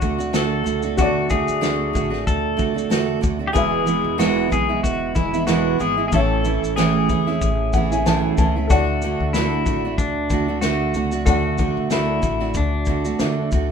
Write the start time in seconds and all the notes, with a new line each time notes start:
Already playing: D2 F#4 A4 D5
0.01 D3 A3 D4 F#4, kick, shaker
0.18 A3 D4 F#4, shaker
0.33 D3 A3 D4 F#4 A4, snare, shaker
0.64 C#2 D3 A3 D4 F#4, shaker
0.82 A3 D4 F#4, shaker
0.97 D2 D3 A3 D4 F#4 D5, kick, shaker
1.30 D3 A3 D4 F#4 G#4, kick, shaker
1.48 D2, shaker
1.61 D3 A3 D4 F#4, snare, shaker
1.93 A1 D3 A3 D4 F#4, kick, shaker
2.10 A3 D4 F#4, snare
2.27 D2 A4, kick, shaker
2.57 D3 A3 D4 F#4, kick, shaker
2.74 A3 D4 F#4
2.78 shaker
2.90 E2 D3 A3 D4 F#4, snare, shaker
3.21 D2 D3 A3 D4 F#4, kick, shaker
3.39 A3 D4 F#4
3.48 G4
3.52 E1 E2 B2 E3 G#3 B3 E4 G#4 B4, kick, shaker
3.58 E5
3.86 E3 G#3 B3 E4, shaker
4.04 E1
4.18 E2 B2 E3 G#3 B3 E4 F#4, snare, shaker
4.50 B1 E3 G#3 B3 E4 G#4, kick, shaker
4.69 E3 G#3 B3 E4
4.83 E1 F#4, kick, shaker
5.15 E3 G#3 B3 E4, kick, shaker
5.33 E3 G#3 B3 E4, shaker
5.47 E2 B2 E3 G#3 B3 E4 F#4, snare, shaker
5.79 G#1 E3 G#3 B3 E4 G#4, shaker
5.97 E3 G#3 B3 E4
6.08 A2 E3 A3 G#4, shaker
6.12 A1 A3 C#4 E4 A4 C#5 E5, kick
6.44 E3 A3 C#4 E4, shaker
6.63 A1, shaker
6.76 A2 E3 A3 C#4 E4 G#4, snare, shaker
7.09 E2 E3 A3 C#4 E4, kick, shaker
7.27 A3 C#4 E4, snare
7.42 A1, kick, shaker
7.73 E3 A3 C#4 F#5, kick, shaker
7.77 E4
7.92 A3 C#4 E4 G#5, shaker
8.05 B1 A2 E3 A3 C#4 E4 A5, snare, shaker
8.37 C#2 E3 A3 C#4 E4 A5, kick, shaker
8.56 A3 C#4 E4
8.67 D2 D3 F#4 A4 D5 F#5, kick, shaker
8.73 A3 D4 F#4
9.02 D3 A3 D4, shaker
9.06 F#4
9.20 D2
9.33 D3 A3 D4 E4, snare, shaker
9.38 F#4
9.66 A1 D3 A3 D4 F#4, kick, shaker
9.85 A3 D4 F#4
9.98 D2 D4, kick, shaker
10.30 D3 A3 D4 F#4, kick, shaker
10.48 A3 D4 F#4
10.61 D3 A3 D4 F#4, snare, shaker
10.94 C#2 D3 A3 D4 F#4, shaker
11.12 A3 D4 F#4, shaker
11.25 D2 D3 A3 D4 F#4 A4 D5 F#5, kick, shaker
11.58 D3 A3 D4 F#4, kick, shaker
11.77 D2
11.90 D3 A3 D4 E4 F#4, snare, shaker
12.22 A1 D3 A3 D4 F#4, kick, shaker
12.40 A3 D4 F#4, snare
12.54 D2 D4, kick, shaker
12.85 D3 A3 D4, kick, shaker
12.89 F#4
13.04 A3 D4 F#4, shaker
13.19 E2 D3 A3 D4 F#4, snare, shaker
13.52 D2 D3 A3 D4 F#4, kick, shaker